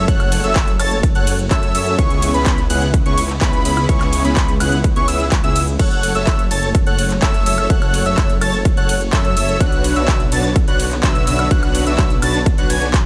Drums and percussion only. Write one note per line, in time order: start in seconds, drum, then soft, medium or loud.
0.08 kick loud
0.08 closed hi-hat medium
0.08 shaker soft
0.20 closed hi-hat soft
0.20 high woodblock medium
0.20 shaker soft
0.32 open hi-hat loud
0.32 ride medium
0.32 shaker medium
0.44 closed hi-hat soft
0.44 shaker soft
0.56 kick loud
0.56 clap loud
0.56 closed hi-hat loud
0.56 shaker soft
0.68 closed hi-hat soft
0.68 shaker soft
0.80 open hi-hat loud
0.80 ride medium
0.80 high woodblock medium
0.80 shaker medium
0.91 closed hi-hat soft
0.91 shaker soft
1.03 kick loud
1.03 closed hi-hat medium
1.03 shaker soft
1.15 closed hi-hat soft
1.15 shaker soft
1.27 open hi-hat loud
1.27 ride medium
1.27 shaker medium
1.39 closed hi-hat soft
1.39 shaker soft
1.51 kick loud
1.51 clap loud
1.51 closed hi-hat loud
1.51 shaker soft
1.63 closed hi-hat soft
1.63 shaker soft
1.75 open hi-hat loud
1.75 ride medium
1.75 shaker medium
1.87 closed hi-hat soft
1.87 shaker soft
1.99 kick loud
1.99 closed hi-hat medium
1.99 shaker soft
2.10 closed hi-hat soft
2.10 shaker soft
2.22 open hi-hat loud
2.22 ride medium
2.22 shaker medium
2.34 closed hi-hat soft
2.34 shaker soft
2.46 kick loud
2.46 clap loud
2.46 closed hi-hat loud
2.46 shaker soft
2.58 closed hi-hat soft
2.58 shaker soft
2.70 open hi-hat loud
2.70 ride medium
2.70 shaker medium
2.82 closed hi-hat soft
2.82 shaker soft
2.94 kick loud
2.94 closed hi-hat medium
2.94 shaker soft
3.06 closed hi-hat soft
3.06 shaker soft
3.18 open hi-hat loud
3.18 ride medium
3.18 shaker medium
3.29 clap soft
3.29 closed hi-hat soft
3.29 shaker soft
3.41 kick loud
3.41 clap loud
3.41 closed hi-hat medium
3.41 shaker soft
3.53 closed hi-hat soft
3.53 shaker soft
3.65 open hi-hat loud
3.65 ride medium
3.65 shaker medium
3.77 closed hi-hat soft
3.77 high woodblock medium
3.77 shaker soft
3.89 kick loud
3.89 closed hi-hat medium
3.89 shaker soft
4.01 clap soft
4.01 closed hi-hat soft
4.01 high woodblock medium
4.01 shaker soft
4.13 open hi-hat loud
4.13 ride medium
4.13 shaker medium
4.25 closed hi-hat soft
4.25 shaker soft
4.37 kick loud
4.37 clap loud
4.37 closed hi-hat loud
4.37 shaker soft
4.49 closed hi-hat soft
4.49 shaker soft
4.60 open hi-hat loud
4.60 ride medium
4.60 high woodblock medium
4.60 shaker medium
4.72 closed hi-hat soft
4.72 shaker soft
4.84 kick loud
4.84 closed hi-hat medium
4.84 shaker soft
4.96 closed hi-hat soft
4.96 shaker soft
5.08 open hi-hat loud
5.08 ride medium
5.08 shaker medium
5.20 closed hi-hat soft
5.20 shaker soft
5.32 kick loud
5.32 clap loud
5.32 closed hi-hat loud
5.32 shaker soft
5.44 closed hi-hat soft
5.44 shaker soft
5.56 open hi-hat loud
5.56 ride medium
5.56 shaker medium
5.68 closed hi-hat soft
5.68 shaker soft
5.79 kick loud
5.79 closed hi-hat loud
5.79 crash medium
5.79 shaker soft
5.91 closed hi-hat soft
5.91 shaker soft
6.03 open hi-hat loud
6.03 ride medium
6.03 shaker medium
6.15 closed hi-hat soft
6.15 shaker soft
6.27 kick loud
6.27 clap loud
6.27 closed hi-hat loud
6.27 shaker soft
6.39 closed hi-hat soft
6.39 shaker soft
6.51 open hi-hat loud
6.51 ride medium
6.51 shaker medium
6.63 closed hi-hat soft
6.63 shaker soft
6.75 kick loud
6.75 closed hi-hat loud
6.75 shaker soft
6.87 closed hi-hat soft
6.87 shaker soft
6.99 open hi-hat loud
6.99 ride medium
6.99 shaker medium
7.10 clap soft
7.10 closed hi-hat soft
7.10 shaker soft
7.22 kick loud
7.22 clap loud
7.22 closed hi-hat loud
7.22 shaker soft
7.34 closed hi-hat soft
7.34 shaker soft
7.46 open hi-hat loud
7.46 ride medium
7.46 shaker medium
7.58 closed hi-hat soft
7.58 high woodblock medium
7.58 shaker soft
7.70 kick loud
7.70 closed hi-hat medium
7.70 shaker soft
7.82 closed hi-hat soft
7.82 high woodblock medium
7.82 shaker soft
7.94 open hi-hat loud
7.94 ride medium
7.94 shaker medium
8.06 closed hi-hat soft
8.06 shaker soft
8.18 kick loud
8.18 clap loud
8.18 closed hi-hat medium
8.18 shaker soft
8.30 closed hi-hat soft
8.30 shaker soft
8.41 open hi-hat loud
8.41 ride medium
8.41 high woodblock medium
8.41 shaker medium
8.53 closed hi-hat soft
8.53 shaker soft
8.65 kick loud
8.65 closed hi-hat medium
8.65 shaker soft
8.77 closed hi-hat soft
8.77 shaker soft
8.89 open hi-hat loud
8.89 ride medium
8.89 shaker medium
9.01 closed hi-hat soft
9.01 shaker soft
9.13 kick loud
9.13 clap loud
9.13 closed hi-hat loud
9.13 shaker soft
9.25 closed hi-hat soft
9.25 shaker soft
9.37 open hi-hat loud
9.37 ride medium
9.37 shaker medium
9.49 closed hi-hat soft
9.49 shaker soft
9.61 kick loud
9.61 closed hi-hat medium
9.61 shaker soft
9.72 closed hi-hat soft
9.72 shaker soft
9.84 open hi-hat loud
9.84 ride medium
9.84 shaker medium
9.96 closed hi-hat soft
9.96 shaker soft
10.08 kick loud
10.08 clap loud
10.08 closed hi-hat medium
10.08 shaker soft
10.20 closed hi-hat soft
10.20 shaker soft
10.32 open hi-hat loud
10.32 ride medium
10.32 shaker medium
10.44 closed hi-hat soft
10.44 shaker soft
10.56 kick loud
10.56 closed hi-hat medium
10.56 shaker soft
10.68 closed hi-hat soft
10.68 shaker soft
10.80 open hi-hat loud
10.80 ride medium
10.80 shaker medium
10.91 clap soft
10.91 closed hi-hat soft
10.91 shaker soft
11.03 kick loud
11.03 clap loud
11.03 closed hi-hat medium
11.03 shaker soft
11.15 closed hi-hat soft
11.15 shaker soft
11.27 open hi-hat loud
11.27 ride medium
11.27 shaker medium
11.39 closed hi-hat soft
11.39 high woodblock medium
11.39 shaker soft
11.51 kick loud
11.51 closed hi-hat medium
11.51 shaker soft
11.63 closed hi-hat soft
11.63 high woodblock medium
11.63 shaker soft
11.75 open hi-hat loud
11.75 ride medium
11.75 shaker medium
11.87 closed hi-hat soft
11.87 shaker soft
11.99 kick loud
11.99 clap loud
11.99 closed hi-hat medium
11.99 shaker soft
12.10 closed hi-hat soft
12.10 shaker soft
12.22 open hi-hat loud
12.22 ride medium
12.22 high woodblock medium
12.22 shaker medium
12.34 closed hi-hat soft
12.34 shaker soft
12.46 kick loud
12.46 closed hi-hat medium
12.46 shaker soft
12.58 closed hi-hat soft
12.58 shaker soft
12.70 open hi-hat loud
12.70 ride medium
12.70 shaker medium
12.82 closed hi-hat soft
12.82 shaker soft
12.94 kick loud
12.94 clap loud
12.94 closed hi-hat medium
12.94 shaker soft